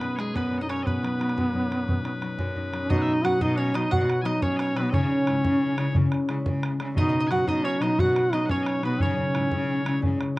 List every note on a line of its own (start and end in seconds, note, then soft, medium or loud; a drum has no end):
0.00 0.41 B2 medium
0.00 0.17 G#3 soft
0.00 0.20 B3 medium
0.00 0.18 B3 soft
0.00 1.56 C#4 medium
0.00 0.19 D#4 medium
0.00 0.16 B4 medium
0.00 0.20 B4 medium
0.00 bodhran medium
0.16 0.51 G#3 soft
0.16 0.37 G#3 medium
0.16 0.52 B3 soft
0.16 0.52 D#4 soft
0.16 0.36 G#4 medium
0.16 0.37 G#4 medium
0.16 0.19 C#5 medium
0.16 bodhran medium
0.35 0.92 F#2 medium
0.35 0.61 B3 medium
0.35 0.58 B4 medium
0.35 0.60 B4 medium
0.35 bodhran medium
0.52 0.68 G#3 soft
0.52 0.69 B3 soft
0.52 0.69 D#4 medium
0.52 bodhran soft
0.58 0.69 D#5 medium
0.58 0.70 D#5 medium
0.58 0.62 F#5 medium
0.62 0.69 D#4 medium
0.69 0.92 G#3 medium
0.69 1.02 B3 medium
0.69 0.88 C#4 medium
0.69 1.03 D#4 medium
0.69 0.85 C#5 medium
0.69 0.83 C#5 medium
0.69 bodhran medium
0.83 1.43 B2 medium
0.83 2.56 B3 loud
0.83 2.90 B4 medium
0.83 0.86 D#5 medium
0.83 bodhran medium
0.87 2.52 B4 medium
1.02 1.18 F#3 medium
1.02 1.19 B3 soft
1.02 1.20 D#4 medium
1.02 bodhran medium
1.19 1.52 F#3 medium
1.19 1.53 B3 soft
1.19 1.54 D#4 medium
1.19 bodhran medium
1.29 bodhran medium
1.37 1.94 F#2 medium
1.37 bodhran medium
1.53 1.69 F#3 soft
1.53 1.70 B3 soft
1.53 1.71 D#4 medium
1.53 bodhran soft
1.70 2.03 F#3 medium
1.70 2.04 B3 soft
1.70 2.05 D#4 medium
1.70 bodhran medium
1.88 2.44 B2 medium
1.88 bodhran medium
2.04 2.20 F#3 soft
2.04 2.22 B3 soft
2.04 2.22 D#4 soft
2.04 bodhran medium
2.21 2.54 F#3 soft
2.21 2.55 B3 soft
2.21 2.56 D#4 medium
2.21 bodhran medium
2.39 2.95 F#2 medium
2.39 bodhran medium
2.55 2.71 F#3 soft
2.55 2.72 B3 soft
2.55 2.73 D#4 medium
2.55 bodhran soft
2.72 2.95 F#3 medium
2.72 3.24 B3 soft
2.72 3.24 D#4 medium
2.72 bodhran medium
2.82 2.92 C#4 medium
2.90 3.91 B2 medium
2.90 3.04 B2 loud
2.90 3.26 D#4 loud
2.90 3.22 D#5 medium
2.90 2.98 D#5 medium
2.90 bodhran medium
2.98 3.13 E5 medium
2.98 3.02 F#5 medium
3.08 bodhran soft
3.13 3.25 D#5 medium
3.24 3.38 F#2 loud
3.24 3.73 F#3 medium
3.24 3.75 B3 medium
3.24 3.74 D#4 medium
3.24 3.42 F#4 loud
3.24 3.40 F#5 loud
3.24 3.42 F#5 medium
3.24 bodhran medium
3.41 3.68 B2 loud
3.41 3.60 D#4 loud
3.41 3.57 D#5 medium
3.41 3.56 D#5 medium
3.41 bodhran medium
3.56 3.78 C#4 loud
3.56 3.74 C#5 medium
3.56 3.75 C#5 medium
3.56 3.59 F#5 medium
3.74 3.88 B2 loud
3.74 4.23 F#3 medium
3.74 4.24 B3 medium
3.74 4.25 D#4 medium
3.74 3.92 D#4 loud
3.74 3.92 D#5 medium
3.74 3.93 D#5 medium
3.74 bodhran medium
3.91 4.99 B2 medium
3.91 4.06 B2 loud
3.91 4.20 F#4 loud
3.91 4.23 F#5 medium
3.91 4.22 F#5 medium
3.91 bodhran medium
4.10 bodhran medium
4.22 4.75 F#3 medium
4.22 4.76 B3 soft
4.22 4.76 D#4 medium
4.22 4.28 E4 medium
4.22 4.41 D#5 medium
4.22 4.26 G#5 medium
4.26 4.39 B2 medium
4.26 4.44 D#4 medium
4.26 4.43 D#5 medium
4.26 bodhran medium
4.42 4.69 B2 medium
4.42 4.79 C#4 loud
4.42 4.58 C#5 medium
4.42 4.57 C#5 medium
4.42 bodhran medium
4.57 4.76 C#5 medium
4.57 4.77 C#5 medium
4.57 4.60 D#5 medium
4.57 bodhran medium
4.76 4.90 B2 loud
4.76 4.99 F#3 medium
4.76 7.30 B3 soft
4.76 4.96 B3 medium
4.76 5.34 D#4 medium
4.76 4.92 B4 medium
4.76 4.90 B4 medium
4.76 bodhran medium
4.90 5.94 C#3 medium
4.90 5.92 C#5 medium
4.90 4.94 D#5 medium
4.90 bodhran medium
4.94 5.07 C#3 loud
4.94 5.96 C#4 loud
4.94 5.96 C#5 medium
5.27 5.41 G#2 medium
5.27 5.77 G#3 medium
5.27 5.78 C#4 medium
5.27 5.78 E4 medium
5.27 bodhran medium
5.45 5.71 C#3 loud
5.45 bodhran medium
5.78 5.92 C#3 loud
5.78 6.28 G#3 medium
5.78 6.29 C#4 soft
5.78 6.30 E4 medium
5.78 bodhran medium
5.95 6.08 C#3 medium
5.95 7.02 C#3 medium
5.95 bodhran medium
6.12 bodhran medium
6.29 6.42 C#3 medium
6.29 6.79 G#3 medium
6.29 6.79 C#4 soft
6.29 6.80 E4 medium
6.29 bodhran medium
6.46 6.73 C#3 medium
6.46 bodhran loud
6.63 bodhran medium
6.80 6.94 C#3 loud
6.80 7.02 G#3 medium
6.80 9.35 C#4 medium
6.80 7.37 E4 medium
6.80 bodhran medium
6.97 7.98 B2 medium
6.97 7.10 B2 loud
6.97 7.29 D#4 loud
6.97 7.27 D#5 medium
6.97 7.08 D#5 loud
6.97 bodhran medium
7.09 7.19 D#5 medium
7.14 bodhran soft
7.20 7.31 D#5 medium
7.27 7.80 F#3 medium
7.27 7.81 B3 medium
7.27 7.47 F#4 loud
7.27 7.48 F#5 medium
7.27 7.31 G#5 medium
7.27 bodhran medium
7.31 7.45 F#2 loud
7.31 7.82 D#4 medium
7.31 7.49 F#5 medium
7.48 7.75 B2 loud
7.48 7.67 D#4 loud
7.48 7.65 D#5 medium
7.48 7.64 D#5 medium
7.48 bodhran medium
7.65 7.84 C#4 loud
7.65 7.82 C#5 medium
7.65 7.81 C#5 medium
7.81 7.96 B2 medium
7.81 8.32 F#3 medium
7.81 8.33 B3 medium
7.81 8.33 D#4 medium
7.81 8.01 D#4 loud
7.81 7.99 D#5 loud
7.81 7.98 D#5 medium
7.81 bodhran medium
7.99 9.06 B2 medium
7.99 8.13 B2 loud
7.99 8.35 F#4 loud
7.99 8.33 F#5 medium
7.99 8.35 F#5 medium
7.99 bodhran medium
8.16 bodhran medium
8.32 8.47 B2 medium
8.32 8.82 F#3 medium
8.32 8.84 B3 medium
8.32 8.52 D#4 loud
8.32 8.84 D#4 medium
8.32 8.46 D#5 medium
8.32 8.49 D#5 medium
8.32 bodhran medium
8.46 8.50 F#5 medium
8.46 bodhran medium
8.50 8.77 B2 medium
8.50 8.84 C#4 loud
8.50 8.63 C#5 medium
8.50 8.82 C#5 medium
8.63 8.84 C#5 medium
8.63 8.67 D#5 medium
8.63 bodhran medium
8.83 8.98 B2 medium
8.83 9.06 F#3 medium
8.83 10.39 B3 soft
8.83 9.03 B3 medium
8.83 9.41 D#4 medium
8.83 9.01 B4 medium
8.83 bodhran medium
9.00 10.01 C#3 medium
9.00 9.15 C#3 loud
9.00 10.03 C#4 loud
9.00 9.99 C#5 medium
9.00 10.00 C#5 medium
9.00 bodhran medium
9.18 bodhran soft
9.34 9.49 G#2 medium
9.34 9.84 G#3 medium
9.34 9.85 C#4 medium
9.34 9.86 E4 medium
9.34 bodhran medium
9.51 9.79 C#3 loud
9.51 bodhran medium
9.85 10.00 C#3 medium
9.85 10.35 G#3 medium
9.85 10.36 C#4 medium
9.85 10.36 E4 medium
9.85 bodhran medium
10.02 10.39 C#3 medium
10.02 10.16 C#3 medium
10.02 bodhran medium
10.21 bodhran medium
10.36 10.39 G#3 medium